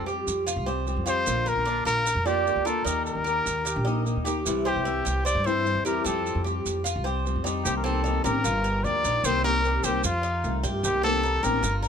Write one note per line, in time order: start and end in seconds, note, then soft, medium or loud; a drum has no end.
0.00 0.26 F2 medium
0.06 0.46 F3 soft
0.06 0.46 G3 soft
0.06 0.46 C4 medium
0.06 0.46 G4 medium
0.06 0.47 G4 medium
0.06 maracas soft
0.27 0.55 F2 medium
0.27 maracas medium
0.47 0.66 F4 medium
0.47 muted nylon-string guitar stroke medium
0.47 maracas medium
0.56 0.95 C2 loud
0.66 0.86 G3 medium
0.66 0.86 C4 medium
0.66 0.86 G4 medium
0.66 1.06 C5 medium
0.66 maracas soft
0.86 1.06 F3 soft
0.86 1.06 G3 medium
0.86 1.06 C4 soft
0.86 1.05 G4 medium
0.86 maracas soft
0.96 1.25 F2 medium
1.06 1.26 G3 medium
1.06 1.26 C4 medium
1.06 1.45 F4 medium
1.06 1.26 G4 medium
1.06 1.50 C5 loud
1.06 maracas medium
1.25 1.55 A#1 medium
1.25 1.64 D3 medium
1.25 1.65 A#3 medium
1.25 1.65 D4 medium
1.25 1.66 F4 medium
1.25 maracas medium
1.46 1.66 A#4 medium
1.46 1.86 A#4 loud
1.46 maracas soft
1.56 1.85 A#1 medium
1.65 2.05 D3 soft
1.65 2.05 A#3 medium
1.65 1.86 D4 medium
1.65 2.06 D4 medium
1.65 2.06 F4 medium
1.65 maracas soft
1.85 2.15 A#1 medium
1.85 2.05 F4 medium
1.85 2.28 A#4 loud
1.85 maracas medium
2.05 2.25 A#4 medium
2.05 muted nylon-string guitar stroke medium
2.05 maracas medium
2.15 2.54 F2 medium
2.25 2.46 A#3 medium
2.25 2.46 D4 medium
2.25 2.45 F4 medium
2.25 2.68 G4 loud
2.25 2.65 D5 medium
2.25 maracas soft
2.46 2.65 D3 soft
2.46 2.66 A#3 medium
2.46 2.65 D4 medium
2.46 2.64 F4 medium
2.46 maracas soft
2.56 2.85 D2 medium
2.65 2.85 A#3 medium
2.65 2.86 D4 medium
2.65 2.85 F4 medium
2.65 2.86 A4 medium
2.65 2.85 A#4 medium
2.65 maracas medium
2.85 3.14 D#2 medium
2.85 3.24 D#3 medium
2.85 3.25 A#3 medium
2.85 3.24 D#4 medium
2.85 3.26 D#4 medium
2.85 3.26 G4 medium
2.85 3.05 A#4 medium
2.85 maracas medium
3.06 4.22 A#4 loud
3.06 maracas soft
3.15 3.44 D#2 medium
3.24 3.64 D#3 medium
3.24 3.64 A#3 soft
3.24 3.65 D#4 medium
3.24 3.65 G4 medium
3.24 3.64 A#4 medium
3.24 maracas soft
3.46 3.74 D#2 medium
3.46 maracas medium
3.65 3.85 G4 medium
3.65 muted nylon-string guitar stroke medium
3.65 maracas medium
3.76 4.14 A#1 loud
3.85 4.05 A#3 medium
3.85 4.05 D#4 medium
3.85 4.05 G4 medium
3.85 4.24 D#5 medium
3.85 maracas soft
4.05 4.25 D#3 medium
4.05 4.25 A#3 medium
4.05 4.25 D#4 medium
4.05 4.23 G4 medium
4.05 maracas soft
4.16 4.44 D#2 medium
4.24 4.46 A#3 medium
4.24 4.45 D#4 medium
4.24 4.44 G4 medium
4.24 4.64 G4 medium
4.24 maracas medium
4.45 4.75 C2 medium
4.45 4.85 C3 medium
4.45 4.84 E3 medium
4.45 4.85 G3 medium
4.45 4.85 C4 medium
4.45 4.86 E4 medium
4.45 maracas medium
4.65 5.22 G4 loud
4.65 4.85 C5 medium
4.65 maracas soft
4.76 5.04 C2 medium
4.85 5.25 E3 soft
4.85 5.25 G3 medium
4.85 5.25 C4 medium
4.85 5.05 E4 medium
4.85 5.26 E4 medium
4.85 maracas soft
5.05 5.34 C2 medium
5.05 5.25 G4 medium
5.05 maracas medium
5.25 5.44 C5 medium
5.25 5.48 D5 loud
5.25 muted nylon-string guitar stroke medium
5.25 maracas medium
5.35 5.73 G2 loud
5.44 5.64 E3 medium
5.44 5.65 G3 medium
5.44 5.65 C4 medium
5.44 5.65 E4 medium
5.44 5.85 C5 loud
5.44 5.84 E5 medium
5.44 maracas soft
5.65 5.85 E3 soft
5.65 5.85 G3 medium
5.65 5.85 C4 medium
5.65 5.84 E4 medium
5.65 maracas soft
5.75 6.04 E2 medium
5.85 6.04 E3 medium
5.85 6.04 G3 medium
5.85 6.04 C4 medium
5.85 6.04 E4 medium
5.85 6.04 G4 medium
5.85 6.07 A#4 medium
5.85 maracas medium
6.04 6.34 F2 medium
6.04 6.43 F3 medium
6.04 6.44 G3 medium
6.04 6.44 C4 medium
6.04 6.45 C4 medium
6.04 6.45 G4 medium
6.04 6.45 A4 medium
6.04 maracas medium
6.26 maracas soft
6.35 6.64 F2 medium
6.44 6.83 F3 soft
6.44 6.84 G3 medium
6.44 6.84 C4 medium
6.44 6.84 G4 medium
6.44 6.85 G4 medium
6.44 maracas soft
6.65 6.94 F2 medium
6.65 maracas medium
6.84 7.04 F4 medium
6.84 muted nylon-string guitar stroke medium
6.84 maracas medium
6.96 7.33 C2 loud
7.04 7.24 G3 medium
7.04 7.25 C4 medium
7.04 7.24 G4 medium
7.04 7.43 C5 medium
7.04 maracas soft
7.25 7.44 F3 soft
7.25 7.45 G3 soft
7.25 7.45 C4 medium
7.25 7.44 G4 medium
7.25 maracas soft
7.36 7.64 F2 medium
7.44 7.65 G3 medium
7.44 7.65 C4 medium
7.44 7.64 D#4 medium
7.44 7.64 G4 medium
7.44 maracas medium
7.64 8.22 C2 loud
7.64 7.84 C3 medium
7.64 7.84 D#3 medium
7.64 7.85 A#3 medium
7.64 7.84 C4 medium
7.64 7.77 G4 medium
7.64 7.84 G4 medium
7.64 maracas loud
7.77 7.86 A#4 medium
7.84 8.04 D#3 medium
7.84 8.05 A#3 medium
7.84 8.03 C4 medium
7.84 8.04 C4 medium
7.84 8.04 G4 medium
7.84 8.24 A4 loud
7.84 maracas soft
8.04 8.24 D#3 medium
8.04 8.24 A#3 medium
8.04 8.24 C4 medium
8.04 8.24 D#4 medium
8.04 8.23 G4 medium
8.04 maracas soft
8.24 8.44 A1 loud
8.24 8.45 D#3 medium
8.24 8.44 A#3 medium
8.24 8.44 C4 medium
8.24 8.44 G4 medium
8.24 8.44 A#4 medium
8.24 8.86 A#4 loud
8.24 maracas medium
8.44 8.83 G1 loud
8.44 8.64 F4 medium
8.44 muted nylon-string guitar stroke medium
8.44 maracas medium
8.64 9.03 A#4 medium
8.64 maracas soft
8.84 9.03 D2 loud
8.84 9.24 F3 medium
8.84 9.24 A#3 soft
8.84 9.24 D4 medium
8.84 9.25 G4 medium
8.84 9.27 D5 medium
8.84 maracas soft
9.04 9.23 A#1 medium
9.04 9.24 D#4 medium
9.04 maracas medium
9.24 9.81 C2 loud
9.24 9.43 C3 medium
9.24 9.44 D#3 medium
9.24 9.44 A#3 medium
9.24 9.44 C4 medium
9.24 9.43 G4 medium
9.24 9.44 C5 loud
9.24 maracas loud
9.44 9.62 D#3 medium
9.44 9.63 A#3 medium
9.44 9.64 C4 medium
9.44 9.63 G4 medium
9.44 9.83 G4 medium
9.44 9.86 A#4 loud
9.44 maracas soft
9.64 9.83 D#3 medium
9.64 9.84 A#3 medium
9.64 9.84 C4 medium
9.64 9.83 G4 medium
9.64 maracas soft
9.84 10.03 C2 medium
9.84 10.04 D#3 medium
9.84 10.04 A#3 medium
9.84 10.04 C4 medium
9.84 10.03 G4 medium
9.84 10.04 G4 medium
9.84 10.23 C5 medium
9.84 maracas medium
10.04 10.42 F2 loud
10.04 10.60 F4 medium
10.04 muted nylon-string guitar stroke medium
10.04 maracas loud
10.23 10.62 D#4 medium
10.23 maracas soft
10.44 10.63 C2 loud
10.44 10.83 D#3 medium
10.44 10.83 A3 medium
10.44 10.84 C4 medium
10.44 10.84 F4 medium
10.44 maracas soft
10.63 10.83 G2 medium
10.63 11.02 G4 medium
10.63 maracas medium
10.83 11.40 C2 loud
10.83 11.03 C3 medium
10.83 11.03 D#3 medium
10.83 11.03 A#3 medium
10.83 11.03 C4 medium
10.83 11.02 G4 loud
10.83 11.03 G4 medium
10.83 maracas medium
11.03 11.23 D#3 medium
11.03 11.24 A#3 medium
11.03 11.23 C4 medium
11.03 11.23 G4 medium
11.03 11.45 A4 loud
11.03 maracas soft
11.23 11.43 D#3 medium
11.23 11.43 A#3 soft
11.23 11.43 C4 medium
11.23 11.43 D#4 medium
11.23 11.42 G4 medium
11.23 maracas soft
11.43 11.62 A1 medium
11.43 11.63 D#3 medium
11.43 11.63 A#3 medium
11.43 11.63 C4 medium
11.43 11.62 G4 medium
11.43 11.62 A#4 medium
11.43 11.76 A#4 loud
11.43 maracas medium
11.63 11.88 G1 loud
11.63 11.82 F4 medium
11.63 muted nylon-string guitar stroke medium
11.63 maracas medium
11.83 11.88 A#4 medium
11.83 maracas soft